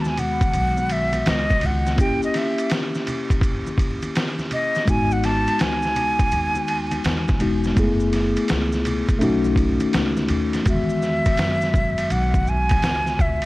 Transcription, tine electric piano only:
0, 0, Header, 1, 2, 480
1, 0, Start_track
1, 0, Key_signature, 4, "major"
1, 0, Tempo, 722892
1, 1317, Time_signature, 4, 2, 24, 8
1, 8934, End_track
2, 0, Start_track
2, 0, Title_t, "Tine electric piano"
2, 0, Program_c, 0, 4
2, 0, Note_on_c, 0, 51, 70
2, 0, Note_on_c, 0, 56, 71
2, 0, Note_on_c, 0, 59, 59
2, 0, Note_on_c, 0, 66, 69
2, 1282, Note_off_c, 0, 56, 0
2, 1287, Note_off_c, 0, 59, 0
2, 1293, Note_off_c, 0, 51, 0
2, 1301, Note_on_c, 0, 58, 63
2, 1311, Note_on_c, 0, 61, 57
2, 1320, Note_off_c, 0, 66, 0
2, 1321, Note_on_c, 0, 64, 50
2, 1334, Note_on_c, 0, 67, 68
2, 3202, Note_off_c, 0, 58, 0
2, 3207, Note_off_c, 0, 61, 0
2, 3213, Note_off_c, 0, 64, 0
2, 3219, Note_off_c, 0, 67, 0
2, 3223, Note_on_c, 0, 56, 63
2, 3233, Note_on_c, 0, 59, 54
2, 3243, Note_on_c, 0, 63, 60
2, 3254, Note_on_c, 0, 66, 68
2, 4884, Note_off_c, 0, 56, 0
2, 4889, Note_off_c, 0, 59, 0
2, 4894, Note_off_c, 0, 63, 0
2, 4899, Note_off_c, 0, 66, 0
2, 4910, Note_on_c, 0, 56, 56
2, 4914, Note_on_c, 0, 59, 49
2, 4919, Note_on_c, 0, 63, 55
2, 4925, Note_on_c, 0, 66, 57
2, 5134, Note_off_c, 0, 56, 0
2, 5142, Note_on_c, 0, 56, 62
2, 5144, Note_off_c, 0, 59, 0
2, 5152, Note_on_c, 0, 59, 73
2, 5158, Note_off_c, 0, 63, 0
2, 5161, Note_off_c, 0, 66, 0
2, 5163, Note_on_c, 0, 64, 75
2, 5174, Note_on_c, 0, 68, 75
2, 5186, Note_on_c, 0, 57, 72
2, 5205, Note_off_c, 0, 56, 0
2, 6092, Note_off_c, 0, 57, 0
2, 6095, Note_off_c, 0, 59, 0
2, 6100, Note_on_c, 0, 57, 89
2, 6101, Note_off_c, 0, 64, 0
2, 6106, Note_off_c, 0, 68, 0
2, 6110, Note_on_c, 0, 61, 78
2, 6119, Note_on_c, 0, 63, 72
2, 6131, Note_on_c, 0, 66, 86
2, 7049, Note_off_c, 0, 57, 0
2, 7054, Note_off_c, 0, 61, 0
2, 7059, Note_off_c, 0, 63, 0
2, 7059, Note_on_c, 0, 56, 57
2, 7065, Note_off_c, 0, 66, 0
2, 7071, Note_on_c, 0, 59, 49
2, 7080, Note_on_c, 0, 51, 54
2, 7090, Note_on_c, 0, 66, 66
2, 8934, Note_off_c, 0, 51, 0
2, 8934, Note_off_c, 0, 56, 0
2, 8934, Note_off_c, 0, 59, 0
2, 8934, Note_off_c, 0, 66, 0
2, 8934, End_track
0, 0, End_of_file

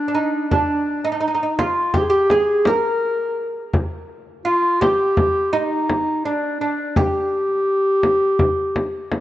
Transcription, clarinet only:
0, 0, Header, 1, 2, 480
1, 0, Start_track
1, 0, Tempo, 715990
1, 347, Time_signature, 9, 3, 24, 8
1, 6170, End_track
2, 0, Start_track
2, 0, Title_t, "Clarinet"
2, 0, Program_c, 0, 71
2, 0, Note_on_c, 0, 62, 86
2, 329, Note_off_c, 0, 62, 0
2, 359, Note_on_c, 0, 62, 83
2, 724, Note_on_c, 0, 63, 75
2, 734, Note_off_c, 0, 62, 0
2, 1072, Note_on_c, 0, 65, 78
2, 1082, Note_off_c, 0, 63, 0
2, 1319, Note_on_c, 0, 67, 83
2, 1329, Note_off_c, 0, 65, 0
2, 1338, Note_on_c, 0, 68, 74
2, 1348, Note_off_c, 0, 67, 0
2, 1403, Note_on_c, 0, 67, 98
2, 1413, Note_off_c, 0, 68, 0
2, 1556, Note_on_c, 0, 68, 85
2, 1566, Note_off_c, 0, 67, 0
2, 1802, Note_on_c, 0, 70, 95
2, 1812, Note_off_c, 0, 68, 0
2, 2515, Note_off_c, 0, 70, 0
2, 2988, Note_on_c, 0, 65, 102
2, 3226, Note_on_c, 0, 67, 104
2, 3236, Note_off_c, 0, 65, 0
2, 3713, Note_on_c, 0, 63, 89
2, 3723, Note_off_c, 0, 67, 0
2, 4190, Note_off_c, 0, 63, 0
2, 4194, Note_on_c, 0, 62, 72
2, 4415, Note_off_c, 0, 62, 0
2, 4427, Note_on_c, 0, 62, 76
2, 4677, Note_on_c, 0, 67, 93
2, 4687, Note_off_c, 0, 62, 0
2, 6170, Note_off_c, 0, 67, 0
2, 6170, End_track
0, 0, End_of_file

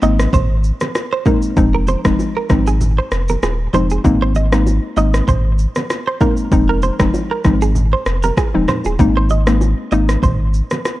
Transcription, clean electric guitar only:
0, 0, Header, 1, 2, 480
1, 0, Start_track
1, 0, Key_signature, -4, "major"
1, 0, Tempo, 618557
1, 1218, Time_signature, 4, 2, 24, 8
1, 8536, End_track
2, 0, Start_track
2, 0, Title_t, "Clean electric guitar"
2, 0, Program_c, 0, 27
2, 23, Note_on_c, 0, 75, 79
2, 112, Note_off_c, 0, 75, 0
2, 263, Note_on_c, 0, 72, 70
2, 427, Note_off_c, 0, 72, 0
2, 876, Note_on_c, 0, 72, 75
2, 949, Note_off_c, 0, 72, 0
2, 984, Note_on_c, 0, 70, 75
2, 1073, Note_off_c, 0, 70, 0
2, 1356, Note_on_c, 0, 70, 74
2, 1428, Note_off_c, 0, 70, 0
2, 1464, Note_on_c, 0, 72, 81
2, 1553, Note_off_c, 0, 72, 0
2, 1837, Note_on_c, 0, 70, 73
2, 1909, Note_off_c, 0, 70, 0
2, 2076, Note_on_c, 0, 68, 74
2, 2149, Note_off_c, 0, 68, 0
2, 2316, Note_on_c, 0, 72, 74
2, 2389, Note_off_c, 0, 72, 0
2, 2558, Note_on_c, 0, 70, 74
2, 2630, Note_off_c, 0, 70, 0
2, 2664, Note_on_c, 0, 68, 78
2, 2753, Note_off_c, 0, 68, 0
2, 2904, Note_on_c, 0, 72, 82
2, 2993, Note_off_c, 0, 72, 0
2, 3037, Note_on_c, 0, 68, 73
2, 3109, Note_off_c, 0, 68, 0
2, 3275, Note_on_c, 0, 72, 87
2, 3348, Note_off_c, 0, 72, 0
2, 3383, Note_on_c, 0, 75, 76
2, 3473, Note_off_c, 0, 75, 0
2, 3863, Note_on_c, 0, 75, 81
2, 3953, Note_off_c, 0, 75, 0
2, 4104, Note_on_c, 0, 72, 73
2, 4268, Note_off_c, 0, 72, 0
2, 4715, Note_on_c, 0, 72, 74
2, 4788, Note_off_c, 0, 72, 0
2, 4822, Note_on_c, 0, 70, 82
2, 4912, Note_off_c, 0, 70, 0
2, 5194, Note_on_c, 0, 70, 74
2, 5267, Note_off_c, 0, 70, 0
2, 5301, Note_on_c, 0, 72, 81
2, 5391, Note_off_c, 0, 72, 0
2, 5673, Note_on_c, 0, 70, 66
2, 5747, Note_off_c, 0, 70, 0
2, 5914, Note_on_c, 0, 68, 76
2, 5987, Note_off_c, 0, 68, 0
2, 6154, Note_on_c, 0, 72, 71
2, 6228, Note_off_c, 0, 72, 0
2, 6394, Note_on_c, 0, 70, 76
2, 6467, Note_off_c, 0, 70, 0
2, 6503, Note_on_c, 0, 68, 80
2, 6592, Note_off_c, 0, 68, 0
2, 6743, Note_on_c, 0, 72, 78
2, 6832, Note_off_c, 0, 72, 0
2, 6875, Note_on_c, 0, 68, 72
2, 6948, Note_off_c, 0, 68, 0
2, 7116, Note_on_c, 0, 72, 87
2, 7188, Note_off_c, 0, 72, 0
2, 7223, Note_on_c, 0, 75, 74
2, 7312, Note_off_c, 0, 75, 0
2, 7703, Note_on_c, 0, 75, 79
2, 7792, Note_off_c, 0, 75, 0
2, 7943, Note_on_c, 0, 72, 68
2, 8107, Note_off_c, 0, 72, 0
2, 8536, End_track
0, 0, End_of_file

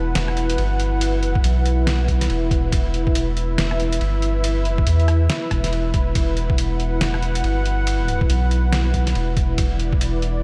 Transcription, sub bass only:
0, 0, Header, 1, 2, 480
1, 0, Start_track
1, 0, Key_signature, 1, "minor"
1, 0, Tempo, 428571
1, 1132, Time_signature, 4, 2, 24, 8
1, 11685, End_track
2, 0, Start_track
2, 0, Title_t, "Sub bass"
2, 0, Program_c, 0, 38
2, 0, Note_on_c, 0, 28, 95
2, 157, Note_off_c, 0, 28, 0
2, 172, Note_on_c, 0, 28, 97
2, 637, Note_off_c, 0, 28, 0
2, 652, Note_on_c, 0, 31, 96
2, 1324, Note_off_c, 0, 31, 0
2, 1324, Note_on_c, 0, 30, 96
2, 1597, Note_off_c, 0, 30, 0
2, 1613, Note_on_c, 0, 35, 98
2, 2557, Note_off_c, 0, 35, 0
2, 2572, Note_on_c, 0, 28, 96
2, 3037, Note_off_c, 0, 28, 0
2, 3052, Note_on_c, 0, 28, 95
2, 3997, Note_off_c, 0, 28, 0
2, 4013, Note_on_c, 0, 28, 95
2, 4477, Note_off_c, 0, 28, 0
2, 4491, Note_on_c, 0, 31, 99
2, 5163, Note_off_c, 0, 31, 0
2, 5163, Note_on_c, 0, 30, 99
2, 5436, Note_off_c, 0, 30, 0
2, 5451, Note_on_c, 0, 40, 98
2, 5917, Note_off_c, 0, 40, 0
2, 6172, Note_on_c, 0, 28, 97
2, 6637, Note_off_c, 0, 28, 0
2, 6652, Note_on_c, 0, 28, 99
2, 6877, Note_off_c, 0, 28, 0
2, 6892, Note_on_c, 0, 28, 95
2, 7837, Note_off_c, 0, 28, 0
2, 7852, Note_on_c, 0, 28, 97
2, 8317, Note_off_c, 0, 28, 0
2, 8331, Note_on_c, 0, 31, 97
2, 9276, Note_off_c, 0, 31, 0
2, 9292, Note_on_c, 0, 35, 100
2, 10237, Note_off_c, 0, 35, 0
2, 10252, Note_on_c, 0, 28, 101
2, 10717, Note_off_c, 0, 28, 0
2, 10732, Note_on_c, 0, 28, 97
2, 11677, Note_off_c, 0, 28, 0
2, 11685, End_track
0, 0, End_of_file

